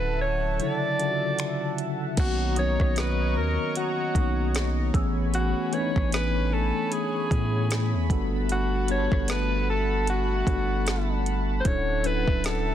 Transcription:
Already playing: 808-style bass D1, tine electric piano D3 F#3 C#4 E4, analog synth pad A4 E5 F#5 A5, alto saxophone B4
0.21 alto saxophone C#5
0.59 tine electric piano C#3 D3 F#3 E4, alto saxophone D5, closed hi-hat
0.99 tine electric piano C#3 D3 F#3 F4, closed hi-hat
1.07 tine electric piano F#4
1.39 finger snap, closed hi-hat
1.78 closed hi-hat
2.17 808-style bass B1, tine electric piano D#3 A#3 B3 C#4 F#4, alto saxophone F#4, analog synth pad C#5 D#5 A#5 C#6, kick, closed hi-hat, crash
2.56 tine electric piano D#3 F#3 B3 C#4 F#4, alto saxophone C#5, celesta D#6, closed hi-hat
2.80 808-style bass B1, kick, cross-stick
2.96 alto saxophone B4, snare, closed hi-hat
3.36 808-style bass D#2, alto saxophone A#4
3.75 alto saxophone F#4, closed hi-hat
4.15 808-style bass B1, tine electric piano D#3 A#3 B3 C#4 D#4, kick, closed hi-hat
4.55 snare, closed hi-hat
4.93 808-style bass A1, tine electric piano E3 A3 B3 C#4 G#4, analog synth pad A3 C#5 G#5 B5, celesta E6, kick, closed hi-hat
5.34 alto saxophone F#4, closed hi-hat
5.72 tine electric piano E3 A3 B3 C#4 D4, alto saxophone C#5, closed hi-hat
5.81 tine electric piano D#4
5.96 808-style bass A1, kick, cross-stick
6.12 alto saxophone B4, snare, closed hi-hat
6.53 alto saxophone A4
6.92 alto saxophone G#4, closed hi-hat
7.31 808-style bass A2, tine electric piano E3 A3 B3 C#4 G#4, kick, closed hi-hat
7.71 snare, closed hi-hat
7.94 808-style bass E2
8.10 808-style bass G1, tine electric piano G3 B3 D4 F#4 A4, analog synth pad F#5 A5, kick, closed hi-hat
8.49 alto saxophone F#4, closed hi-hat
8.88 tine electric piano G3 B3 D4 F#4 G4, alto saxophone C#5, closed hi-hat
8.98 tine electric piano A4
9.12 808-style bass G1, kick, cross-stick
9.28 alto saxophone B4, snare, closed hi-hat
9.70 alto saxophone A4
10.07 alto saxophone F#4, closed hi-hat
10.47 808-style bass G1, tine electric piano G3 B3 D4 F#4 A4, kick, closed hi-hat
10.87 snare, closed hi-hat
11.26 closed hi-hat
11.61 alto saxophone C5
11.65 808-style bass D1, tine electric piano F#3 C#4 D4 E4 A4, analog synth pad A4 E5 A5, alto saxophone C#5, kick, closed hi-hat
12.04 tine electric piano F#3 C#4 D4 E4 B4, alto saxophone B4, closed hi-hat
12.28 808-style bass D1, kick
12.44 alto saxophone A4, snare, closed hi-hat

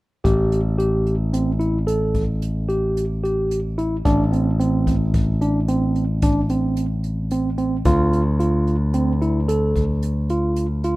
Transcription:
0.24 picked electric bass A1, tine electric piano G4, kick, closed hi-hat
0.52 closed hi-hat
0.79 tine electric piano G4, closed hi-hat
1.06 closed hi-hat
1.33 tine electric piano C4, closed hi-hat
1.59 tine electric piano E4, closed hi-hat
1.87 tine electric piano A4, closed hi-hat
2.14 kick, closed hi-hat
2.42 closed hi-hat
2.69 tine electric piano G4, closed hi-hat
2.97 closed hi-hat
3.24 tine electric piano G4, closed hi-hat
3.51 closed hi-hat
3.78 tine electric piano E4, closed hi-hat
4.05 picked electric bass A1, tine electric piano D4, kick, closed hi-hat
4.32 tine electric piano C4, closed hi-hat
4.60 tine electric piano C4, closed hi-hat
4.87 kick, closed hi-hat
5.14 kick, closed hi-hat
5.41 tine electric piano D4, closed hi-hat
5.68 tine electric piano C4, closed hi-hat
5.95 closed hi-hat
6.22 tine electric piano D4, kick, closed hi-hat
6.49 tine electric piano C4, closed hi-hat
6.77 closed hi-hat
7.04 closed hi-hat
7.31 tine electric piano C4, closed hi-hat
7.58 tine electric piano C4, closed hi-hat
7.85 picked electric bass D2, tine electric piano F4, kick, closed hi-hat
8.13 closed hi-hat
8.40 tine electric piano F4, closed hi-hat
8.67 closed hi-hat
8.94 tine electric piano C4, closed hi-hat
9.22 tine electric piano E4, closed hi-hat
9.48 tine electric piano A4, closed hi-hat
9.76 kick, closed hi-hat
10.02 closed hi-hat
10.29 tine electric piano F4, closed hi-hat
10.56 closed hi-hat
10.84 tine electric piano F4, closed hi-hat

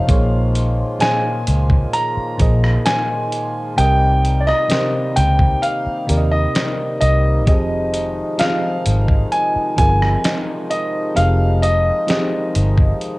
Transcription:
Already playing: fm electric piano C3 F3 A4 C#5 D#5, harmonium D#3 F3, grand piano F5
0.07 fingered electric bass A#1, fm electric piano A#2 A#3 G#4 C5, harmonium G#3 A#3 F4, kick, closed hi-hat
0.11 fm electric piano C#5
0.55 closed hi-hat
0.99 fm electric piano A#2 A#3 G#4 C5 D#5, grand piano G#5, snare, closed hi-hat
1.47 fingered electric bass C#2, closed hi-hat
1.70 kick
1.93 grand piano A#5, closed hi-hat
2.17 muted fingered electric bass stroke
2.38 fingered electric bass A#1, fm electric piano A#2 A#3 G#4 C5, kick, closed hi-hat
2.42 fm electric piano D#5
2.64 cross-stick
2.86 grand piano G#5, snare, closed hi-hat
3.32 closed hi-hat
3.76 fingered electric bass C2, fm electric piano C3 C4 G4 A#4, harmonium C3 D#3 G3 D#4, grand piano G5, closed hi-hat
3.80 fm electric piano D#5
4.25 closed hi-hat
4.41 grand piano D5
4.47 grand piano D#5, cross-stick
4.68 fm electric piano C3 C4 G4 A#4, snare, closed hi-hat
4.72 fm electric piano C5
5.16 fingered electric bass C#2, grand piano G5, closed hi-hat
5.39 kick
5.62 grand piano F5, closed hi-hat
5.86 muted fingered electric bass stroke
6.07 fingered electric bass D#2, fm electric piano C3 C4 G4 A#4, closed hi-hat
6.11 fm electric piano D5
6.17 fm electric piano D#5
6.31 grand piano D#5
6.55 snare, closed hi-hat
7.01 fingered electric bass C2, grand piano D#5, closed hi-hat
7.45 fingered electric bass F1, fm electric piano F3 C4 G4 G#4 D#5, harmonium F3 G#3 D#4, synth bell D#5, kick, closed hi-hat
7.94 closed hi-hat
8.38 fm electric piano F3 C4 F4 G#4 D#5, grand piano F5, snare, closed hi-hat
8.86 fingered electric bass G#1, closed hi-hat
9.08 kick
9.32 grand piano G#5, closed hi-hat
9.56 muted fingered electric bass stroke
9.76 fingered electric bass G1, fm electric piano F3 C4 F4 G#4, grand piano G#5, kick, closed hi-hat
9.80 fm electric piano A#4
10.02 cross-stick
10.24 synth bell D#5, snare, closed hi-hat
10.70 grand piano D#5, closed hi-hat
11.15 fingered electric bass F1, fm electric piano F3 C4 G4 G#4, grand piano F5, closed hi-hat
11.19 fm electric piano F5
11.62 grand piano D#5, closed hi-hat
12.07 fm electric piano F3 C4 G4 G#4, snare, closed hi-hat
12.11 fm electric piano D#5
12.55 fingered electric bass G1, closed hi-hat
12.78 kick
13.01 closed hi-hat

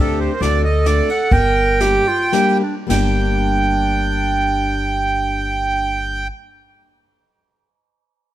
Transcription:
Already playing: steel-string acoustic guitar A3 C4 D4 G4, clarinet G4
0.00 upright bass D2, accordion A4
0.19 accordion C5
0.33 clarinet A#4
0.40 upright bass D2, steel-string acoustic guitar A3 C4 D4 F#4, clarinet A4, accordion D5, snare, ride
0.64 accordion D#5
0.85 steel-string acoustic guitar A3 C4 D4 F#4, accordion D5, snare, ride
1.09 accordion F#5, ride
1.31 upright bass G1, clarinet A#4, accordion G5, kick, ride
1.80 steel-string acoustic guitar G3 A#3 D4 G4, clarinet G4, snare, ride
2.08 clarinet F4
2.32 steel-string acoustic guitar G3 A#3 D4 G4, clarinet G4, snare, ride
2.63 clarinet D4
2.87 upright bass G1, steel-string acoustic guitar G3 A#3 D4, clarinet D4, accordion G5, snare, crash
2.91 steel-string acoustic guitar G4

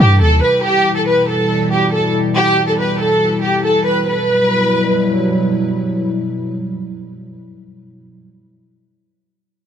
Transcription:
Already playing: analog synth pad C3 E3 G3 E4
0.00 808-style bass G2, violin section G4
0.21 808-style bass D#2, violin section A4
0.42 violin section B4
0.64 analog synth pad B2 E3 G3 E4, violin section G4
0.96 violin section A4
1.07 violin section B4
1.29 violin section A4
1.71 violin section G4
1.92 violin section A4
2.35 violin section G4
2.67 violin section A4
2.78 violin section B4
3.00 violin section A4
3.42 violin section G4
3.64 violin section A4
3.85 violin section B4
4.07 analog synth pad B2 F#3 G3 E4, violin section B4

